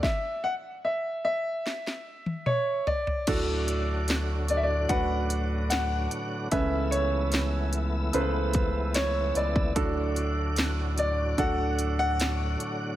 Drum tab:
CC |----------------|x---------------|----------------|----------------|
HH |----------------|x-x-x-x-x-x-x-x-|x-x-x-x-x-x-x-x-|x-x-x-x-x-x-x-x-|
SD |o-------oo------|----o-------o---|----o-------o---|----o-------o---|
T1 |-----------o----|----------------|----------------|----------------|
T2 |------------o---|----------------|----------------|----------------|
FT |--------------oo|----------------|----------------|----------------|
BD |o---------------|o-------o-------|o---------o----o|o-------o-------|